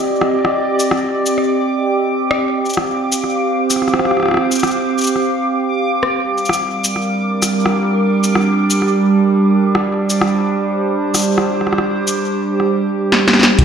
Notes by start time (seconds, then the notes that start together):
Already playing: C4 G4 D5 D#5 D6
0.21 cross-stick
0.45 cross-stick
0.80 shaker
0.91 cross-stick
1.26 shaker
1.38 cross-stick
2.31 cross-stick
2.43 F5
2.66 shaker
2.70 shaker
2.73 cross-stick, shaker
2.86 C5
3.12 shaker
3.24 cross-stick
3.70 cross-stick, shaker
3.76 cross-stick
3.82 cross-stick
3.88 cross-stick
3.94 cross-stick
3.99 cross-stick
4.05 cross-stick
4.11 cross-stick
4.17 cross-stick
4.20 cross-stick
4.23 cross-stick
4.26 cross-stick
4.28 cross-stick
4.31 cross-stick
4.34 cross-stick
4.37 cross-stick
4.52 shaker
4.55 shaker
4.59 cross-stick, shaker
4.63 shaker
4.67 shaker
4.71 shaker
4.98 shaker
5.01 shaker
5.04 shaker
5.07 shaker
5.16 cross-stick
6.03 cross-stick
6.14 G3
6.38 shaker
6.44 A#4, shaker
6.49 cross-stick, shaker
6.63 D4
6.84 shaker
6.96 cross-stick
7.17 G4
7.42 cross-stick, shaker
7.66 cross-stick
8.24 shaker
8.35 cross-stick
8.70 shaker
8.82 cross-stick
9.73 C5, cross-stick
10.10 shaker
10.21 cross-stick
11.14 cross-stick, shaker
11.17 shaker
11.19 shaker
11.21 shaker
11.24 shaker
11.38 cross-stick
11.61 cross-stick
11.67 cross-stick
11.73 cross-stick
11.78 cross-stick
12.07 shaker
12.60 cross-stick
13.12 snare
13.28 snare
13.33 snare
13.39 snare
13.43 snare
13.45 snare
13.58 C2 C4 D6, closed hi-hat